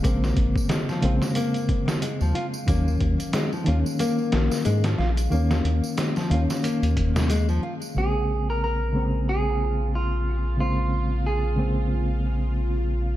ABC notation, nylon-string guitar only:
X:1
M:4/4
L:1/16
Q:"Swing 16ths" 1/4=91
K:Bbm
V:1 name="Nylon-string guitar"
B,4 A, F, F z B,4 A, F, F z | B,4 A, F, F z B,4 A, F, F z | B,4 A, F, F z B,4 A, F, F z | z16 |
z16 |]